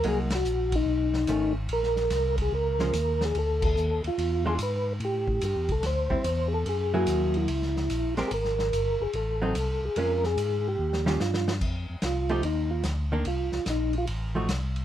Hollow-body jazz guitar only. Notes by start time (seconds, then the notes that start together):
0.04 F#3 A#3 D#4
1.28 D#3 A3 C#4
2.80 F3 G#3 C#4
4.46 E3 G#3 D4 F4
6.10 G3 C4 E4
6.94 F#3 A#3 E4 G#4
8.17 G#3 C4 G4 A#4
9.42 F#3 C4 D#4
9.98 G#3 C#4 F4
11.06 D#3 G3 C#4 F4
12.30 F3 A3 D#4 G4
13.12 D#3 A#3 D4
14.35 F3 A3 D#4 F#4